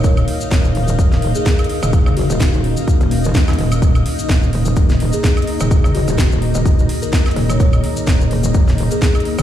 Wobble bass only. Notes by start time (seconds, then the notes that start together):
0.04 D#1
0.51 D#1
0.99 D#1
1.12 D#1
1.83 D#1
2.06 F#1
2.30 D#1
3.01 D#1
3.35 C#2
3.48 D#2
3.58 D#1
3.82 D#1
4.29 D#1
4.77 D#1
4.90 D#1
5.61 D#1
5.84 F#1
6.08 D#1
6.55 D#1
7.36 D#1
7.60 D#1
8.07 D#1
8.55 D#1
8.68 D#1
9.39 D#1